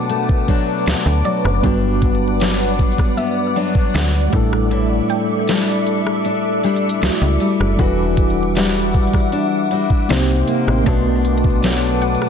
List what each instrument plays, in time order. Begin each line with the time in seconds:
Already playing: steel-string acoustic guitar B2 F#3 D4, tine electric piano A3 B3 D4 F#4 B4, synth pluck B4, ambient pad B4 F#5 A5 D6
0.10 steel-string acoustic guitar A3, closed hi-hat
0.29 kick
0.48 steel-string acoustic guitar F#3 A3 D4, kick, closed hi-hat
0.86 fm bass D2, snare, closed hi-hat
1.06 fm bass D2
1.25 steel-string acoustic guitar F#3, synth pluck D5, closed hi-hat
1.45 fm bass F#1, cross-stick
1.61 fm bass G1, steel-string acoustic guitar G2 D4, tine electric piano G3 B3 D4, ambient pad D5 F#5, kick, closed hi-hat
1.65 tine electric piano F#4 B4
2.02 kick, closed hi-hat
2.15 closed hi-hat
2.28 closed hi-hat
2.40 steel-string acoustic guitar F#3 B3 D4, snare, closed hi-hat
2.79 kick, closed hi-hat
2.92 closed hi-hat
2.98 kick, cross-stick
3.05 closed hi-hat
3.17 steel-string acoustic guitar B3, synth pluck E5, closed hi-hat
3.56 steel-string acoustic guitar F#3 B3 D4, closed hi-hat
3.75 kick
3.94 fm bass D2, snare, closed hi-hat
4.30 fm bass A1, steel-string acoustic guitar A2, tine electric piano G3 A3 D4, ambient pad A4 E5 D6, kick, closed hi-hat
4.34 tine electric piano E4 A4
4.53 cross-stick
4.71 steel-string acoustic guitar A2 E4, closed hi-hat
5.10 synth pluck G5, closed hi-hat
5.48 steel-string acoustic guitar G3 D4 E4, snare, closed hi-hat
5.87 closed hi-hat
6.07 cross-stick
6.25 steel-string acoustic guitar D4, closed hi-hat
6.63 steel-string acoustic guitar G3 D4 E4, closed hi-hat
6.76 closed hi-hat
6.89 closed hi-hat
7.01 fm bass C#2, tine electric piano G3 A3 D4 E4 F#4, snare, closed hi-hat
7.22 fm bass C#2
7.40 steel-string acoustic guitar G3, open hi-hat
7.60 fm bass F#1, cross-stick
7.76 fm bass E1, steel-string acoustic guitar E3 F#4, tine electric piano F#3 D4 E4, ambient pad G3 F#5, kick, closed hi-hat
7.81 tine electric piano G3 F#4 B4
8.17 kick, closed hi-hat
8.30 closed hi-hat
8.43 closed hi-hat
8.55 steel-string acoustic guitar G3 D4 F#4, snare, closed hi-hat
8.94 kick, closed hi-hat
9.07 closed hi-hat
9.13 kick, cross-stick
9.20 closed hi-hat
9.32 steel-string acoustic guitar D4, closed hi-hat
9.71 steel-string acoustic guitar G3 D4 F#4, closed hi-hat
9.90 kick
10.09 fm bass C2, steel-string acoustic guitar C3, tine electric piano A#3 C4 D#4 G4 C5, ambient pad A#4 D#5 G5 C6, snare, closed hi-hat
10.48 steel-string acoustic guitar A#3, closed hi-hat
10.67 fm bass A1, cross-stick
10.84 fm bass B1, steel-string acoustic guitar B2 D4, tine electric piano A3 B3 C#4, ambient pad B4 F#5 A5 D6, synth pluck A5, kick, closed hi-hat
10.88 tine electric piano F#4 B4
10.93 tine electric piano D4
11.25 closed hi-hat
11.38 closed hi-hat
11.44 kick
11.50 closed hi-hat
11.63 steel-string acoustic guitar F#3 A3 D4, snare, closed hi-hat
12.02 synth pluck F#5, closed hi-hat
12.15 closed hi-hat
12.22 cross-stick